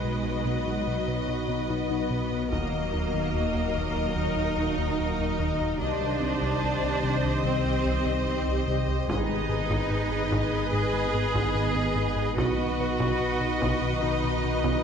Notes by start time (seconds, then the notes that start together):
Already playing: B1 F#3 G#3 B3 D#4 F#4 B4 D#5
0.05 B2
0.25 B2 B4
0.45 B2 B3
0.67 B2 D#4
0.87 B2 F#3 B3
1.08 B2 B4
1.28 B2 D#4
1.48 B2 B3
1.70 B2 B3 D#4
1.90 B2 D#4
2.10 B2 B3
2.32 B2 B4
2.52 D#1 D#2 D#3 F#3 A#3 D#4 F#4 A#4 D#5, taiko
2.73 D#3 A#3
2.93 D#2 D#4
3.13 D#2 D#3
3.34 D#2
3.55 D#2 D#4
3.75 D#2 D#3, taiko
3.96 D#2 F#3
4.16 D#2 D#3 D#4
4.37 D#2 D#4
4.57 D#2 F#3
4.77 D#2 D#3
4.98 D#2 F#3
5.18 D#2 F#3
5.39 D#2 D#3
5.60 D#2 D#4
5.80 C2 C3 D#3 G3 C4 D4 G4 C5 D#5
6.01 C3 G3
6.21 C2 C4
6.41 C2 C3
6.64 C2
6.82 C2 C4
7.03 C2 C3
7.24 C2 D#3
7.44 C2 C3 C4
7.65 C2 C4
7.85 C2
8.05 C2 C3
8.25 C2 D#3 C4
8.46 C2 D#3
8.67 C2 C3
8.87 C2 C4
9.08 G#1 G#2 D#3 G#3 B3 D#4 G#4 B4 D#5, taiko
9.29 G#3 D#4
9.49 G#2 G#4
9.70 G#2 G#3, taiko
9.90 G#2
10.10 G#2 G#4
10.32 G#2 G#3, taiko
10.52 G#2
10.73 G#2 G#3 G#4
10.93 G#2 G#4
11.14 G#2 B3
11.34 G#2 G#3, taiko
11.55 G#2 B3
11.76 G#2 B3
11.95 G#2 G#3
12.16 G#2 G#4
12.37 B1 B2 D#3 B3 D#4 F#4 B4 D#5, taiko
12.58 B3 F#4
12.79 B2 B4
13.00 B2 B3, taiko
13.20 B2
13.40 B2 B4
13.61 B2 B3, taiko
13.82 B2
14.02 B2 B3 D#4
14.24 B2 B4
14.44 B2 D#4
14.64 B2 B3, taiko